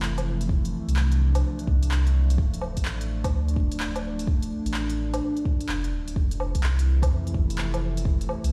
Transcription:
Already playing: sub bass F1, ambient pad C3 E3 F3 A3 E4
0.02 clap
0.18 closed hi-hat, low woodblock
0.41 closed hi-hat
0.48 ambient pad D4, kick
0.65 closed hi-hat
0.87 sub bass C2, closed hi-hat
0.96 clap
1.12 closed hi-hat
1.35 closed hi-hat, low woodblock
1.59 closed hi-hat
1.67 sub bass C2, kick
1.83 closed hi-hat
1.91 clap
2.07 closed hi-hat
2.30 closed hi-hat
2.38 sub bass D1, ambient pad D4, kick
2.54 closed hi-hat
2.61 low woodblock
2.77 sub bass A1, kick, closed hi-hat
2.85 clap
3.01 closed hi-hat
3.24 kick, closed hi-hat, low woodblock
3.32 sub bass D2
3.48 closed hi-hat
3.56 sub bass D1, kick
3.72 closed hi-hat
3.80 clap
3.96 closed hi-hat, low woodblock
4.19 closed hi-hat
4.27 kick
4.42 closed hi-hat
4.65 sub bass A1, closed hi-hat
4.74 clap
4.89 closed hi-hat
5.14 closed hi-hat, low woodblock
5.37 closed hi-hat
5.45 kick
5.61 closed hi-hat
5.68 sub bass F1, clap
5.84 closed hi-hat
5.91 sub bass D1
6.08 closed hi-hat
6.16 sub bass F1, ambient pad C3 E3 F3 A3 E4, kick
6.31 closed hi-hat
6.40 low woodblock
6.55 sub bass C2, kick, closed hi-hat
6.63 clap
6.79 closed hi-hat
7.02 kick, closed hi-hat, low woodblock
7.10 sub bass F2
7.27 closed hi-hat
7.34 sub bass F1, kick
7.50 closed hi-hat
7.58 clap
7.74 closed hi-hat, low woodblock
7.97 closed hi-hat
8.05 kick
8.21 closed hi-hat
8.29 low woodblock
8.44 sub bass C2, closed hi-hat

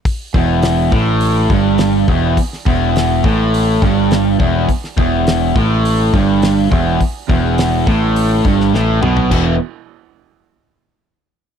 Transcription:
0.05 kick, open hi-hat
0.34 picked electric bass E1, overdriven electric guitar E2, kick
0.62 snare, open hi-hat
0.91 picked electric bass A1, overdriven electric guitar A2, kick
1.21 open hi-hat
1.50 picked electric bass G1, overdriven electric guitar G2, kick
1.78 snare, open hi-hat
2.08 picked electric bass E1, overdriven electric guitar E2, kick
2.37 kick, open hi-hat
2.53 snare
2.66 picked electric bass E1, overdriven electric guitar E2, kick
2.96 snare, open hi-hat
3.23 picked electric bass A1, overdriven electric guitar A2, kick
3.54 open hi-hat
3.82 picked electric bass G1, overdriven electric guitar G2, kick
4.11 snare, open hi-hat
4.39 picked electric bass E1, overdriven electric guitar E2, kick
4.69 kick, open hi-hat
4.84 snare
4.97 picked electric bass E1, overdriven electric guitar E2, kick
5.27 snare, open hi-hat
5.55 picked electric bass A1, overdriven electric guitar A2, kick
5.85 open hi-hat
6.13 picked electric bass G1, overdriven electric guitar G2, kick
6.42 snare, open hi-hat
6.71 picked electric bass E1, overdriven electric guitar E2, kick
7.00 kick, open hi-hat
7.29 picked electric bass E1, overdriven electric guitar E2, kick
7.58 snare, open hi-hat
7.87 picked electric bass A1, overdriven electric guitar A2, kick
8.16 open hi-hat
8.44 picked electric bass G1, overdriven electric guitar G2, kick
8.60 snare
8.73 picked electric bass A1, overdriven electric guitar A2, snare
9.02 picked electric bass B1, overdriven electric guitar B2, mid tom
9.17 floor tom
9.30 picked electric bass E1, overdriven electric guitar E2 B2 E3, kick, crash

